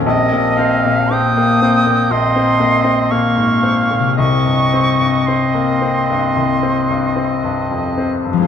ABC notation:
X:1
M:4/4
L:1/16
Q:1/4=56
K:Cphr
V:1 name="Flute"
e4 e'4 c'4 d'4 | d'4 c'8- c'2 z2 |]
V:2 name="Oboe"
e2 f2 g2 g2 e4 f4 | e12- e2 z2 |]
V:3 name="Harp"
[B,,CGB]16 | [C,CGe]16 |]
V:4 name="Clarinet"
C4 B,4 C2 C2 B,2 B,2 | C12- C2 z2 |]
V:5 name="Grand piano" clef=bass
B,,, B,, C B,, C B, C B,, B,,, C B,, C B,, A,, C B,, | C,, G,, C G,, C B, C G,, C,, C G,, C G,, F,, C G,, |]